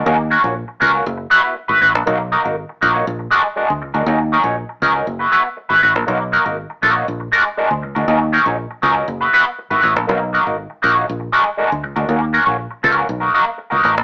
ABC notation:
X:1
M:4/4
L:1/16
Q:1/4=120
K:B
V:1 name="Clean electric guitar"
[A,CFA] z [A,CFA] [A,CFc] z2 [A,CFA] [A,CFA] z2 [B,EFB] [B,EFB] z [B,EFB] [B,EFB] z | [A,DFA] z [A,DFA] [A,DFA] z2 [A,DFA] [A,DFc] z2 [G,=DFA] z [G,DFA] z2 [G,DFA] | [F,CDA] z [F,CDA] [F,CDc] z2 [F,CDA] [F,CDA] z [B,EFB] [B,EFB] z2 [B,EFB] [B,EFB] z | [A,DFA] z [A,DFA] [A,DFA] z2 [A,DFA] [A,DFc] z2 [G,=DFA] z [G,DFA] z2 [G,DFA] |
[F,CDA] z [F,CDA] [F,CDc] z2 [F,CDA] [F,CDA] z [B,EFB] [B,EFB] z2 [B,EFB] [B,EFB] z | [A,DFA] z [A,DFA] [A,DFA] z2 [A,DFA] [A,DFc] z2 [G,=DFA] z [G,DFA] z2 [G,DFA] | [A,CFA] z [A,CFA] [A,CFc] z2 [A,CFA] [A,CFA] z [A,DFA] [A,DFA] z2 [A,DFA] [A,DFA] z |]
V:2 name="Fingered electric bass" clef=bass
D,,3 A,,,2 z C,,2 F,,,2 z3 G,,, =A,,, ^A,,, | B,,,3 G,,,2 z A,,,2 A,,,2 z3 =D,, C,, D,, | D,,3 A,,,2 z C,,2 F,,,2 z3 G,,, =A,,, ^A,,, | B,,,3 G,,,2 z A,,,2 A,,,2 z3 =D,, C,, D,, |
D,,3 A,,,2 z C,,2 F,,,2 z3 G,,, =A,,, ^A,,, | B,,,3 G,,,2 z A,,,2 A,,,2 z3 =D,, C,, D,, | D,,3 A,,,2 z C,,2 B,,,2 z3 C,, =A,,, ^A,,, |]